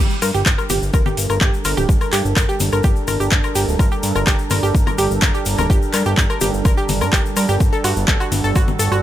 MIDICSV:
0, 0, Header, 1, 5, 480
1, 0, Start_track
1, 0, Key_signature, -2, "minor"
1, 0, Tempo, 476190
1, 1904, Time_signature, 4, 2, 24, 8
1, 9097, End_track
2, 0, Start_track
2, 0, Title_t, "Synth arpeggio sound"
2, 0, Program_c, 0, 84
2, 223, Note_on_c, 0, 70, 77
2, 278, Note_off_c, 0, 70, 0
2, 348, Note_on_c, 0, 67, 82
2, 399, Note_off_c, 0, 67, 0
2, 588, Note_on_c, 0, 70, 77
2, 639, Note_off_c, 0, 70, 0
2, 704, Note_on_c, 0, 67, 77
2, 759, Note_off_c, 0, 67, 0
2, 943, Note_on_c, 0, 70, 85
2, 998, Note_off_c, 0, 70, 0
2, 1069, Note_on_c, 0, 67, 77
2, 1119, Note_off_c, 0, 67, 0
2, 1309, Note_on_c, 0, 70, 75
2, 1359, Note_off_c, 0, 70, 0
2, 1423, Note_on_c, 0, 67, 86
2, 1478, Note_off_c, 0, 67, 0
2, 1664, Note_on_c, 0, 70, 75
2, 1718, Note_off_c, 0, 70, 0
2, 1787, Note_on_c, 0, 67, 79
2, 1838, Note_off_c, 0, 67, 0
2, 2028, Note_on_c, 0, 70, 77
2, 2079, Note_off_c, 0, 70, 0
2, 2143, Note_on_c, 0, 67, 80
2, 2198, Note_off_c, 0, 67, 0
2, 2383, Note_on_c, 0, 70, 81
2, 2438, Note_off_c, 0, 70, 0
2, 2508, Note_on_c, 0, 67, 79
2, 2559, Note_off_c, 0, 67, 0
2, 2748, Note_on_c, 0, 70, 78
2, 2799, Note_off_c, 0, 70, 0
2, 2862, Note_on_c, 0, 67, 83
2, 2918, Note_off_c, 0, 67, 0
2, 3103, Note_on_c, 0, 70, 81
2, 3158, Note_off_c, 0, 70, 0
2, 3227, Note_on_c, 0, 67, 75
2, 3279, Note_off_c, 0, 67, 0
2, 3467, Note_on_c, 0, 70, 78
2, 3518, Note_off_c, 0, 70, 0
2, 3583, Note_on_c, 0, 67, 75
2, 3638, Note_off_c, 0, 67, 0
2, 3823, Note_on_c, 0, 70, 78
2, 3878, Note_off_c, 0, 70, 0
2, 3949, Note_on_c, 0, 67, 74
2, 3999, Note_off_c, 0, 67, 0
2, 4189, Note_on_c, 0, 70, 81
2, 4239, Note_off_c, 0, 70, 0
2, 4303, Note_on_c, 0, 67, 84
2, 4358, Note_off_c, 0, 67, 0
2, 4543, Note_on_c, 0, 70, 80
2, 4598, Note_off_c, 0, 70, 0
2, 4668, Note_on_c, 0, 67, 78
2, 4719, Note_off_c, 0, 67, 0
2, 4908, Note_on_c, 0, 70, 75
2, 4959, Note_off_c, 0, 70, 0
2, 5022, Note_on_c, 0, 67, 81
2, 5078, Note_off_c, 0, 67, 0
2, 5264, Note_on_c, 0, 70, 87
2, 5318, Note_off_c, 0, 70, 0
2, 5388, Note_on_c, 0, 67, 77
2, 5439, Note_off_c, 0, 67, 0
2, 5629, Note_on_c, 0, 70, 79
2, 5679, Note_off_c, 0, 70, 0
2, 5745, Note_on_c, 0, 67, 81
2, 5799, Note_off_c, 0, 67, 0
2, 5985, Note_on_c, 0, 70, 76
2, 6039, Note_off_c, 0, 70, 0
2, 6109, Note_on_c, 0, 67, 80
2, 6159, Note_off_c, 0, 67, 0
2, 6349, Note_on_c, 0, 70, 79
2, 6399, Note_off_c, 0, 70, 0
2, 6464, Note_on_c, 0, 67, 77
2, 6519, Note_off_c, 0, 67, 0
2, 6704, Note_on_c, 0, 70, 84
2, 6759, Note_off_c, 0, 70, 0
2, 6830, Note_on_c, 0, 67, 75
2, 6880, Note_off_c, 0, 67, 0
2, 7071, Note_on_c, 0, 70, 75
2, 7120, Note_off_c, 0, 70, 0
2, 7185, Note_on_c, 0, 67, 86
2, 7239, Note_off_c, 0, 67, 0
2, 7424, Note_on_c, 0, 70, 74
2, 7479, Note_off_c, 0, 70, 0
2, 7549, Note_on_c, 0, 67, 80
2, 7599, Note_off_c, 0, 67, 0
2, 7789, Note_on_c, 0, 69, 76
2, 7839, Note_off_c, 0, 69, 0
2, 7904, Note_on_c, 0, 66, 76
2, 7959, Note_off_c, 0, 66, 0
2, 8144, Note_on_c, 0, 69, 86
2, 8199, Note_off_c, 0, 69, 0
2, 8268, Note_on_c, 0, 66, 76
2, 8319, Note_off_c, 0, 66, 0
2, 8509, Note_on_c, 0, 69, 75
2, 8559, Note_off_c, 0, 69, 0
2, 8624, Note_on_c, 0, 66, 83
2, 8678, Note_off_c, 0, 66, 0
2, 8863, Note_on_c, 0, 69, 79
2, 8918, Note_off_c, 0, 69, 0
2, 8988, Note_on_c, 0, 66, 74
2, 9039, Note_off_c, 0, 66, 0
2, 9097, End_track
3, 0, Start_track
3, 0, Title_t, "Analog synth pad"
3, 0, Program_c, 1, 89
3, 0, Note_on_c, 1, 55, 84
3, 0, Note_on_c, 1, 62, 80
3, 0, Note_on_c, 1, 69, 77
3, 0, Note_on_c, 1, 70, 89
3, 7623, Note_off_c, 1, 69, 0
3, 7623, Note_off_c, 1, 70, 0
3, 7663, Note_on_c, 1, 69, 97
3, 7664, Note_on_c, 1, 66, 78
3, 9097, Note_off_c, 1, 55, 0
3, 9097, Note_off_c, 1, 62, 0
3, 9097, Note_off_c, 1, 66, 0
3, 9097, Note_off_c, 1, 69, 0
3, 9097, End_track
4, 0, Start_track
4, 0, Title_t, "Analog synth bass"
4, 0, Program_c, 2, 38
4, 223, Note_on_c, 2, 43, 93
4, 319, Note_off_c, 2, 43, 0
4, 348, Note_on_c, 2, 31, 85
4, 437, Note_off_c, 2, 31, 0
4, 464, Note_on_c, 2, 31, 99
4, 559, Note_off_c, 2, 31, 0
4, 704, Note_on_c, 2, 31, 96
4, 800, Note_off_c, 2, 31, 0
4, 829, Note_on_c, 2, 31, 82
4, 917, Note_off_c, 2, 31, 0
4, 944, Note_on_c, 2, 31, 105
4, 1039, Note_off_c, 2, 31, 0
4, 1184, Note_on_c, 2, 31, 96
4, 1280, Note_off_c, 2, 31, 0
4, 1308, Note_on_c, 2, 31, 81
4, 1397, Note_off_c, 2, 31, 0
4, 1423, Note_on_c, 2, 31, 104
4, 1519, Note_off_c, 2, 31, 0
4, 1664, Note_on_c, 2, 31, 98
4, 1760, Note_off_c, 2, 31, 0
4, 1789, Note_on_c, 2, 26, 85
4, 1877, Note_off_c, 2, 26, 0
4, 1903, Note_on_c, 2, 31, 103
4, 1999, Note_off_c, 2, 31, 0
4, 2144, Note_on_c, 2, 43, 93
4, 2239, Note_off_c, 2, 43, 0
4, 2269, Note_on_c, 2, 31, 85
4, 2357, Note_off_c, 2, 31, 0
4, 2383, Note_on_c, 2, 31, 104
4, 2479, Note_off_c, 2, 31, 0
4, 2624, Note_on_c, 2, 31, 95
4, 2720, Note_off_c, 2, 31, 0
4, 2749, Note_on_c, 2, 31, 83
4, 2837, Note_off_c, 2, 31, 0
4, 2864, Note_on_c, 2, 31, 107
4, 2959, Note_off_c, 2, 31, 0
4, 3103, Note_on_c, 2, 31, 98
4, 3199, Note_off_c, 2, 31, 0
4, 3228, Note_on_c, 2, 31, 82
4, 3317, Note_off_c, 2, 31, 0
4, 3344, Note_on_c, 2, 31, 109
4, 3440, Note_off_c, 2, 31, 0
4, 3584, Note_on_c, 2, 31, 98
4, 3680, Note_off_c, 2, 31, 0
4, 3709, Note_on_c, 2, 26, 85
4, 3797, Note_off_c, 2, 26, 0
4, 3824, Note_on_c, 2, 31, 99
4, 3919, Note_off_c, 2, 31, 0
4, 4063, Note_on_c, 2, 43, 93
4, 4159, Note_off_c, 2, 43, 0
4, 4188, Note_on_c, 2, 31, 90
4, 4277, Note_off_c, 2, 31, 0
4, 4304, Note_on_c, 2, 31, 98
4, 4400, Note_off_c, 2, 31, 0
4, 4544, Note_on_c, 2, 31, 93
4, 4639, Note_off_c, 2, 31, 0
4, 4669, Note_on_c, 2, 31, 80
4, 4757, Note_off_c, 2, 31, 0
4, 4783, Note_on_c, 2, 31, 103
4, 4879, Note_off_c, 2, 31, 0
4, 5024, Note_on_c, 2, 31, 101
4, 5120, Note_off_c, 2, 31, 0
4, 5148, Note_on_c, 2, 31, 81
4, 5237, Note_off_c, 2, 31, 0
4, 5264, Note_on_c, 2, 31, 104
4, 5360, Note_off_c, 2, 31, 0
4, 5503, Note_on_c, 2, 31, 100
4, 5599, Note_off_c, 2, 31, 0
4, 5629, Note_on_c, 2, 26, 89
4, 5717, Note_off_c, 2, 26, 0
4, 5744, Note_on_c, 2, 31, 98
4, 5840, Note_off_c, 2, 31, 0
4, 5984, Note_on_c, 2, 43, 94
4, 6080, Note_off_c, 2, 43, 0
4, 6109, Note_on_c, 2, 31, 91
4, 6197, Note_off_c, 2, 31, 0
4, 6224, Note_on_c, 2, 31, 100
4, 6320, Note_off_c, 2, 31, 0
4, 6464, Note_on_c, 2, 31, 96
4, 6560, Note_off_c, 2, 31, 0
4, 6589, Note_on_c, 2, 31, 83
4, 6677, Note_off_c, 2, 31, 0
4, 6705, Note_on_c, 2, 31, 106
4, 6800, Note_off_c, 2, 31, 0
4, 6944, Note_on_c, 2, 31, 95
4, 7069, Note_on_c, 2, 43, 82
4, 7084, Note_off_c, 2, 31, 0
4, 7157, Note_off_c, 2, 43, 0
4, 7185, Note_on_c, 2, 31, 106
4, 7280, Note_off_c, 2, 31, 0
4, 7424, Note_on_c, 2, 43, 94
4, 7520, Note_off_c, 2, 43, 0
4, 7550, Note_on_c, 2, 31, 84
4, 7637, Note_off_c, 2, 31, 0
4, 7664, Note_on_c, 2, 31, 106
4, 7760, Note_off_c, 2, 31, 0
4, 7904, Note_on_c, 2, 43, 91
4, 8000, Note_off_c, 2, 43, 0
4, 8029, Note_on_c, 2, 31, 87
4, 8117, Note_off_c, 2, 31, 0
4, 8144, Note_on_c, 2, 31, 99
4, 8240, Note_off_c, 2, 31, 0
4, 8384, Note_on_c, 2, 31, 91
4, 8480, Note_off_c, 2, 31, 0
4, 8509, Note_on_c, 2, 31, 81
4, 8597, Note_off_c, 2, 31, 0
4, 8624, Note_on_c, 2, 31, 106
4, 8720, Note_off_c, 2, 31, 0
4, 8864, Note_on_c, 2, 31, 97
4, 8960, Note_off_c, 2, 31, 0
4, 8989, Note_on_c, 2, 31, 83
4, 9077, Note_off_c, 2, 31, 0
4, 9097, End_track
5, 0, Start_track
5, 0, Title_t, "Drums"
5, 104, Note_on_c, 9, 82, 25
5, 205, Note_off_c, 9, 82, 0
5, 223, Note_on_c, 9, 82, 90
5, 224, Note_on_c, 9, 46, 109
5, 224, Note_on_c, 9, 77, 53
5, 324, Note_off_c, 9, 82, 0
5, 325, Note_off_c, 9, 46, 0
5, 325, Note_off_c, 9, 77, 0
5, 346, Note_on_c, 9, 82, 40
5, 447, Note_off_c, 9, 82, 0
5, 463, Note_on_c, 9, 39, 126
5, 463, Note_on_c, 9, 82, 51
5, 464, Note_on_c, 9, 36, 111
5, 564, Note_off_c, 9, 36, 0
5, 564, Note_off_c, 9, 39, 0
5, 564, Note_off_c, 9, 82, 0
5, 588, Note_on_c, 9, 77, 50
5, 591, Note_on_c, 9, 82, 30
5, 689, Note_off_c, 9, 77, 0
5, 691, Note_off_c, 9, 82, 0
5, 702, Note_on_c, 9, 82, 102
5, 703, Note_on_c, 9, 46, 111
5, 703, Note_on_c, 9, 64, 87
5, 803, Note_off_c, 9, 82, 0
5, 804, Note_off_c, 9, 46, 0
5, 804, Note_off_c, 9, 64, 0
5, 829, Note_on_c, 9, 82, 41
5, 930, Note_off_c, 9, 82, 0
5, 943, Note_on_c, 9, 77, 52
5, 943, Note_on_c, 9, 82, 58
5, 944, Note_on_c, 9, 36, 120
5, 1044, Note_off_c, 9, 36, 0
5, 1044, Note_off_c, 9, 77, 0
5, 1044, Note_off_c, 9, 82, 0
5, 1067, Note_on_c, 9, 64, 90
5, 1074, Note_on_c, 9, 82, 25
5, 1168, Note_off_c, 9, 64, 0
5, 1175, Note_off_c, 9, 82, 0
5, 1183, Note_on_c, 9, 46, 100
5, 1193, Note_on_c, 9, 82, 96
5, 1283, Note_off_c, 9, 46, 0
5, 1293, Note_off_c, 9, 82, 0
5, 1307, Note_on_c, 9, 77, 51
5, 1309, Note_on_c, 9, 82, 39
5, 1408, Note_off_c, 9, 77, 0
5, 1410, Note_off_c, 9, 82, 0
5, 1422, Note_on_c, 9, 39, 123
5, 1422, Note_on_c, 9, 82, 51
5, 1424, Note_on_c, 9, 36, 122
5, 1523, Note_off_c, 9, 39, 0
5, 1523, Note_off_c, 9, 82, 0
5, 1524, Note_off_c, 9, 36, 0
5, 1550, Note_on_c, 9, 82, 27
5, 1651, Note_off_c, 9, 82, 0
5, 1660, Note_on_c, 9, 82, 86
5, 1662, Note_on_c, 9, 46, 106
5, 1662, Note_on_c, 9, 77, 52
5, 1761, Note_off_c, 9, 82, 0
5, 1763, Note_off_c, 9, 46, 0
5, 1763, Note_off_c, 9, 77, 0
5, 1787, Note_on_c, 9, 64, 83
5, 1791, Note_on_c, 9, 82, 42
5, 1888, Note_off_c, 9, 64, 0
5, 1892, Note_off_c, 9, 82, 0
5, 1904, Note_on_c, 9, 36, 127
5, 1911, Note_on_c, 9, 82, 55
5, 2004, Note_off_c, 9, 36, 0
5, 2012, Note_off_c, 9, 82, 0
5, 2025, Note_on_c, 9, 82, 26
5, 2027, Note_on_c, 9, 77, 51
5, 2126, Note_off_c, 9, 82, 0
5, 2128, Note_off_c, 9, 77, 0
5, 2144, Note_on_c, 9, 39, 67
5, 2144, Note_on_c, 9, 46, 111
5, 2147, Note_on_c, 9, 82, 95
5, 2244, Note_off_c, 9, 39, 0
5, 2244, Note_off_c, 9, 46, 0
5, 2248, Note_off_c, 9, 82, 0
5, 2271, Note_on_c, 9, 82, 44
5, 2372, Note_off_c, 9, 82, 0
5, 2384, Note_on_c, 9, 36, 117
5, 2384, Note_on_c, 9, 39, 120
5, 2384, Note_on_c, 9, 77, 50
5, 2390, Note_on_c, 9, 82, 58
5, 2484, Note_off_c, 9, 36, 0
5, 2485, Note_off_c, 9, 39, 0
5, 2485, Note_off_c, 9, 77, 0
5, 2491, Note_off_c, 9, 82, 0
5, 2511, Note_on_c, 9, 82, 30
5, 2611, Note_off_c, 9, 82, 0
5, 2619, Note_on_c, 9, 82, 104
5, 2623, Note_on_c, 9, 46, 109
5, 2623, Note_on_c, 9, 64, 83
5, 2720, Note_off_c, 9, 82, 0
5, 2724, Note_off_c, 9, 46, 0
5, 2724, Note_off_c, 9, 64, 0
5, 2744, Note_on_c, 9, 82, 38
5, 2748, Note_on_c, 9, 77, 52
5, 2845, Note_off_c, 9, 82, 0
5, 2849, Note_off_c, 9, 77, 0
5, 2857, Note_on_c, 9, 82, 53
5, 2864, Note_on_c, 9, 36, 127
5, 2958, Note_off_c, 9, 82, 0
5, 2965, Note_off_c, 9, 36, 0
5, 2984, Note_on_c, 9, 82, 27
5, 3084, Note_off_c, 9, 82, 0
5, 3101, Note_on_c, 9, 82, 98
5, 3103, Note_on_c, 9, 46, 100
5, 3103, Note_on_c, 9, 64, 77
5, 3103, Note_on_c, 9, 77, 50
5, 3202, Note_off_c, 9, 82, 0
5, 3204, Note_off_c, 9, 46, 0
5, 3204, Note_off_c, 9, 64, 0
5, 3204, Note_off_c, 9, 77, 0
5, 3231, Note_on_c, 9, 82, 44
5, 3332, Note_off_c, 9, 82, 0
5, 3335, Note_on_c, 9, 82, 51
5, 3343, Note_on_c, 9, 39, 125
5, 3344, Note_on_c, 9, 36, 117
5, 3436, Note_off_c, 9, 82, 0
5, 3443, Note_off_c, 9, 39, 0
5, 3445, Note_off_c, 9, 36, 0
5, 3464, Note_on_c, 9, 82, 30
5, 3468, Note_on_c, 9, 77, 52
5, 3565, Note_off_c, 9, 82, 0
5, 3569, Note_off_c, 9, 77, 0
5, 3581, Note_on_c, 9, 82, 91
5, 3583, Note_on_c, 9, 46, 108
5, 3682, Note_off_c, 9, 82, 0
5, 3684, Note_off_c, 9, 46, 0
5, 3712, Note_on_c, 9, 82, 45
5, 3813, Note_off_c, 9, 82, 0
5, 3824, Note_on_c, 9, 36, 125
5, 3824, Note_on_c, 9, 77, 50
5, 3829, Note_on_c, 9, 82, 55
5, 3924, Note_off_c, 9, 36, 0
5, 3925, Note_off_c, 9, 77, 0
5, 3930, Note_off_c, 9, 82, 0
5, 3948, Note_on_c, 9, 82, 26
5, 4049, Note_off_c, 9, 82, 0
5, 4064, Note_on_c, 9, 46, 116
5, 4064, Note_on_c, 9, 82, 106
5, 4164, Note_off_c, 9, 46, 0
5, 4165, Note_off_c, 9, 82, 0
5, 4189, Note_on_c, 9, 77, 49
5, 4190, Note_on_c, 9, 82, 40
5, 4290, Note_off_c, 9, 77, 0
5, 4291, Note_off_c, 9, 82, 0
5, 4304, Note_on_c, 9, 36, 116
5, 4304, Note_on_c, 9, 39, 125
5, 4307, Note_on_c, 9, 82, 58
5, 4404, Note_off_c, 9, 36, 0
5, 4404, Note_off_c, 9, 39, 0
5, 4408, Note_off_c, 9, 82, 0
5, 4424, Note_on_c, 9, 82, 30
5, 4524, Note_off_c, 9, 82, 0
5, 4537, Note_on_c, 9, 82, 93
5, 4544, Note_on_c, 9, 46, 115
5, 4544, Note_on_c, 9, 64, 81
5, 4544, Note_on_c, 9, 77, 54
5, 4638, Note_off_c, 9, 82, 0
5, 4645, Note_off_c, 9, 46, 0
5, 4645, Note_off_c, 9, 64, 0
5, 4645, Note_off_c, 9, 77, 0
5, 4672, Note_on_c, 9, 82, 38
5, 4772, Note_off_c, 9, 82, 0
5, 4783, Note_on_c, 9, 36, 125
5, 4790, Note_on_c, 9, 82, 60
5, 4884, Note_off_c, 9, 36, 0
5, 4891, Note_off_c, 9, 82, 0
5, 4909, Note_on_c, 9, 64, 87
5, 4909, Note_on_c, 9, 77, 51
5, 4910, Note_on_c, 9, 82, 27
5, 5010, Note_off_c, 9, 64, 0
5, 5010, Note_off_c, 9, 77, 0
5, 5011, Note_off_c, 9, 82, 0
5, 5023, Note_on_c, 9, 82, 97
5, 5024, Note_on_c, 9, 46, 108
5, 5124, Note_off_c, 9, 82, 0
5, 5125, Note_off_c, 9, 46, 0
5, 5152, Note_on_c, 9, 82, 45
5, 5253, Note_off_c, 9, 82, 0
5, 5256, Note_on_c, 9, 82, 61
5, 5264, Note_on_c, 9, 36, 121
5, 5264, Note_on_c, 9, 39, 125
5, 5264, Note_on_c, 9, 77, 54
5, 5357, Note_off_c, 9, 82, 0
5, 5364, Note_off_c, 9, 36, 0
5, 5365, Note_off_c, 9, 39, 0
5, 5365, Note_off_c, 9, 77, 0
5, 5388, Note_on_c, 9, 82, 27
5, 5489, Note_off_c, 9, 82, 0
5, 5497, Note_on_c, 9, 82, 100
5, 5504, Note_on_c, 9, 46, 115
5, 5598, Note_off_c, 9, 82, 0
5, 5605, Note_off_c, 9, 46, 0
5, 5627, Note_on_c, 9, 82, 41
5, 5629, Note_on_c, 9, 64, 75
5, 5629, Note_on_c, 9, 77, 51
5, 5728, Note_off_c, 9, 82, 0
5, 5730, Note_off_c, 9, 64, 0
5, 5730, Note_off_c, 9, 77, 0
5, 5744, Note_on_c, 9, 36, 126
5, 5750, Note_on_c, 9, 82, 51
5, 5845, Note_off_c, 9, 36, 0
5, 5850, Note_off_c, 9, 82, 0
5, 5869, Note_on_c, 9, 82, 29
5, 5970, Note_off_c, 9, 82, 0
5, 5982, Note_on_c, 9, 82, 100
5, 5984, Note_on_c, 9, 39, 64
5, 5984, Note_on_c, 9, 46, 111
5, 5984, Note_on_c, 9, 77, 57
5, 6083, Note_off_c, 9, 82, 0
5, 6085, Note_off_c, 9, 39, 0
5, 6085, Note_off_c, 9, 46, 0
5, 6085, Note_off_c, 9, 77, 0
5, 6104, Note_on_c, 9, 82, 41
5, 6204, Note_off_c, 9, 82, 0
5, 6224, Note_on_c, 9, 36, 117
5, 6224, Note_on_c, 9, 39, 124
5, 6229, Note_on_c, 9, 82, 49
5, 6325, Note_off_c, 9, 36, 0
5, 6325, Note_off_c, 9, 39, 0
5, 6329, Note_off_c, 9, 82, 0
5, 6349, Note_on_c, 9, 77, 54
5, 6352, Note_on_c, 9, 82, 28
5, 6450, Note_off_c, 9, 77, 0
5, 6453, Note_off_c, 9, 82, 0
5, 6459, Note_on_c, 9, 82, 101
5, 6464, Note_on_c, 9, 46, 117
5, 6464, Note_on_c, 9, 64, 85
5, 6560, Note_off_c, 9, 82, 0
5, 6565, Note_off_c, 9, 46, 0
5, 6565, Note_off_c, 9, 64, 0
5, 6592, Note_on_c, 9, 82, 41
5, 6693, Note_off_c, 9, 82, 0
5, 6704, Note_on_c, 9, 36, 127
5, 6704, Note_on_c, 9, 77, 55
5, 6704, Note_on_c, 9, 82, 61
5, 6805, Note_off_c, 9, 36, 0
5, 6805, Note_off_c, 9, 77, 0
5, 6805, Note_off_c, 9, 82, 0
5, 6830, Note_on_c, 9, 82, 30
5, 6931, Note_off_c, 9, 82, 0
5, 6943, Note_on_c, 9, 82, 89
5, 6944, Note_on_c, 9, 46, 104
5, 6944, Note_on_c, 9, 64, 74
5, 7044, Note_off_c, 9, 82, 0
5, 7045, Note_off_c, 9, 46, 0
5, 7045, Note_off_c, 9, 64, 0
5, 7067, Note_on_c, 9, 82, 45
5, 7069, Note_on_c, 9, 77, 54
5, 7168, Note_off_c, 9, 82, 0
5, 7170, Note_off_c, 9, 77, 0
5, 7185, Note_on_c, 9, 36, 117
5, 7185, Note_on_c, 9, 39, 125
5, 7194, Note_on_c, 9, 82, 50
5, 7285, Note_off_c, 9, 36, 0
5, 7285, Note_off_c, 9, 39, 0
5, 7294, Note_off_c, 9, 82, 0
5, 7315, Note_on_c, 9, 82, 31
5, 7416, Note_off_c, 9, 82, 0
5, 7422, Note_on_c, 9, 82, 101
5, 7426, Note_on_c, 9, 46, 112
5, 7426, Note_on_c, 9, 77, 56
5, 7523, Note_off_c, 9, 82, 0
5, 7526, Note_off_c, 9, 46, 0
5, 7526, Note_off_c, 9, 77, 0
5, 7544, Note_on_c, 9, 82, 42
5, 7645, Note_off_c, 9, 82, 0
5, 7664, Note_on_c, 9, 36, 117
5, 7664, Note_on_c, 9, 82, 56
5, 7765, Note_off_c, 9, 36, 0
5, 7765, Note_off_c, 9, 82, 0
5, 7790, Note_on_c, 9, 82, 27
5, 7891, Note_off_c, 9, 82, 0
5, 7905, Note_on_c, 9, 46, 111
5, 7905, Note_on_c, 9, 77, 55
5, 7910, Note_on_c, 9, 82, 96
5, 8006, Note_off_c, 9, 46, 0
5, 8006, Note_off_c, 9, 77, 0
5, 8011, Note_off_c, 9, 82, 0
5, 8029, Note_on_c, 9, 82, 42
5, 8130, Note_off_c, 9, 82, 0
5, 8144, Note_on_c, 9, 36, 119
5, 8145, Note_on_c, 9, 39, 121
5, 8147, Note_on_c, 9, 82, 55
5, 8245, Note_off_c, 9, 36, 0
5, 8246, Note_off_c, 9, 39, 0
5, 8247, Note_off_c, 9, 82, 0
5, 8270, Note_on_c, 9, 77, 56
5, 8272, Note_on_c, 9, 82, 27
5, 8371, Note_off_c, 9, 77, 0
5, 8372, Note_off_c, 9, 82, 0
5, 8385, Note_on_c, 9, 46, 112
5, 8385, Note_on_c, 9, 64, 85
5, 8388, Note_on_c, 9, 82, 96
5, 8486, Note_off_c, 9, 46, 0
5, 8486, Note_off_c, 9, 64, 0
5, 8489, Note_off_c, 9, 82, 0
5, 8509, Note_on_c, 9, 82, 39
5, 8610, Note_off_c, 9, 82, 0
5, 8623, Note_on_c, 9, 82, 56
5, 8625, Note_on_c, 9, 36, 118
5, 8625, Note_on_c, 9, 77, 56
5, 8724, Note_off_c, 9, 82, 0
5, 8725, Note_off_c, 9, 36, 0
5, 8726, Note_off_c, 9, 77, 0
5, 8748, Note_on_c, 9, 82, 30
5, 8750, Note_on_c, 9, 64, 92
5, 8849, Note_off_c, 9, 82, 0
5, 8850, Note_off_c, 9, 64, 0
5, 8865, Note_on_c, 9, 46, 101
5, 8865, Note_on_c, 9, 82, 95
5, 8965, Note_off_c, 9, 46, 0
5, 8966, Note_off_c, 9, 82, 0
5, 8989, Note_on_c, 9, 77, 56
5, 8993, Note_on_c, 9, 82, 42
5, 9090, Note_off_c, 9, 77, 0
5, 9094, Note_off_c, 9, 82, 0
5, 9097, End_track
0, 0, End_of_file